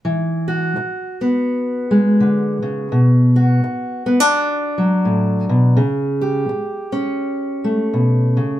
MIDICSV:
0, 0, Header, 1, 3, 480
1, 0, Start_track
1, 0, Tempo, 715990
1, 36, Time_signature, 4, 2, 24, 8
1, 5763, End_track
2, 0, Start_track
2, 0, Title_t, "Steel-string acoustic guitar"
2, 0, Program_c, 0, 25
2, 32, Note_on_c, 0, 52, 50
2, 320, Note_on_c, 0, 66, 41
2, 507, Note_off_c, 0, 52, 0
2, 812, Note_on_c, 0, 59, 36
2, 1279, Note_on_c, 0, 56, 44
2, 1477, Note_on_c, 0, 50, 43
2, 1757, Note_off_c, 0, 50, 0
2, 1759, Note_on_c, 0, 49, 43
2, 1931, Note_off_c, 0, 56, 0
2, 1932, Note_off_c, 0, 66, 0
2, 1954, Note_off_c, 0, 49, 0
2, 1956, Note_on_c, 0, 47, 54
2, 2252, Note_on_c, 0, 66, 41
2, 2430, Note_off_c, 0, 47, 0
2, 2715, Note_off_c, 0, 59, 0
2, 2723, Note_on_c, 0, 59, 42
2, 2816, Note_off_c, 0, 59, 0
2, 2816, Note_on_c, 0, 62, 34
2, 3203, Note_on_c, 0, 54, 46
2, 3386, Note_on_c, 0, 45, 40
2, 3680, Note_off_c, 0, 45, 0
2, 3683, Note_on_c, 0, 47, 45
2, 3858, Note_off_c, 0, 66, 0
2, 3865, Note_on_c, 0, 49, 56
2, 3875, Note_off_c, 0, 62, 0
2, 3876, Note_off_c, 0, 47, 0
2, 3877, Note_off_c, 0, 54, 0
2, 4165, Note_on_c, 0, 67, 41
2, 4344, Note_off_c, 0, 49, 0
2, 4641, Note_on_c, 0, 61, 45
2, 5124, Note_on_c, 0, 57, 46
2, 5319, Note_on_c, 0, 47, 39
2, 5607, Note_off_c, 0, 47, 0
2, 5610, Note_on_c, 0, 49, 45
2, 5763, Note_off_c, 0, 49, 0
2, 5763, Note_off_c, 0, 57, 0
2, 5763, Note_off_c, 0, 61, 0
2, 5763, Note_off_c, 0, 67, 0
2, 5763, End_track
3, 0, Start_track
3, 0, Title_t, "Muted steel-string acoustic guitar strokes"
3, 509, Note_on_c, 9, 29, 46
3, 576, Note_off_c, 9, 29, 0
3, 2438, Note_on_c, 9, 29, 47
3, 2505, Note_off_c, 9, 29, 0
3, 4352, Note_on_c, 9, 29, 51
3, 4419, Note_off_c, 9, 29, 0
3, 5763, End_track
0, 0, End_of_file